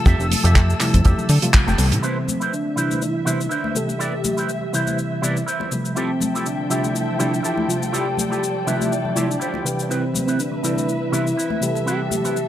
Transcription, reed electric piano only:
0.00 0.77 C3 medium
0.00 0.77 F3 medium
0.00 0.78 G3 medium
0.00 0.78 A3 medium
0.00 0.78 F4 medium
0.80 1.27 C3 medium
0.80 1.27 F3 medium
0.80 1.27 G3 medium
0.80 1.27 A3 medium
0.80 1.27 E4 medium
1.42 1.76 C3 loud
1.42 1.76 F3 medium
1.42 1.76 G3 medium
1.42 1.76 A3 medium
1.42 1.76 F4 loud
1.78 2.27 C3 medium
1.78 2.28 E3 medium
1.78 2.28 G3 medium
1.78 2.28 B3 medium
1.78 2.28 A4 medium
2.77 3.23 C3 medium
2.77 3.23 E3 medium
2.77 3.24 G3 medium
2.77 3.24 E4 medium
3.26 3.45 C3 medium
3.26 3.46 E3 medium
3.26 3.46 G3 medium
3.26 3.46 B3 medium
3.26 3.46 E4 medium
3.75 4.71 C3 medium
3.75 4.71 E3 medium
3.75 4.71 G3 medium
3.75 4.72 G4 medium
4.73 5.20 C3 medium
4.73 5.20 E3 medium
4.73 5.20 G3 medium
4.73 5.20 E4 medium
5.22 5.42 C3 medium
5.22 5.42 E3 medium
5.22 5.42 G3 medium
5.22 5.43 B3 medium
5.22 5.43 E4 medium
5.71 6.67 C3 medium
5.71 6.67 F3 medium
5.71 6.68 G3 medium
5.71 6.68 A3 medium
6.70 7.17 C3 medium
6.70 7.17 F3 medium
6.70 7.17 G3 medium
6.70 7.17 A3 medium
6.70 7.17 E5 medium
7.19 7.39 C3 medium
7.19 7.39 F3 medium
7.19 7.39 G3 medium
7.19 7.39 A3 medium
7.19 7.39 E4 medium
7.68 8.64 C3 medium
7.68 8.64 F3 medium
7.68 8.64 G3 medium
7.68 8.65 A3 medium
8.67 9.13 C3 medium
8.67 9.13 F3 medium
8.67 9.14 G3 medium
8.67 9.14 A3 medium
8.67 9.14 E5 medium
9.16 9.36 C3 medium
9.16 9.36 F3 medium
9.16 9.36 G3 medium
9.16 9.36 A3 medium
9.16 9.36 E4 medium
9.64 10.60 C3 medium
9.64 10.61 E3 medium
9.64 10.61 G3 medium
9.64 10.61 G4 medium
9.64 10.61 B4 medium
10.63 11.10 C3 medium
10.63 11.10 E3 medium
10.63 11.10 G3 medium
10.63 11.11 E4 medium
10.63 11.10 B4 medium
11.12 11.32 C3 medium
11.12 11.32 E3 medium
11.12 11.32 G3 medium
11.12 11.33 B3 medium
11.12 11.33 E4 medium
11.61 12.48 C3 medium
11.61 12.48 E3 medium
11.61 12.48 G3 medium
11.61 12.48 G4 medium
11.61 12.48 B4 medium

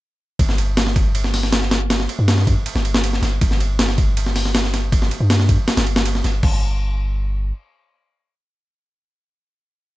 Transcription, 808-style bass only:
0.39 2.08 G1 loud
2.19 2.55 G2 medium
2.75 3.21 G1 medium
3.22 3.39 G1 medium
3.41 5.10 G1 loud
5.20 5.57 G2 medium
5.77 6.23 G1 medium
6.24 6.41 G1 medium
6.43 7.52 G1 loud

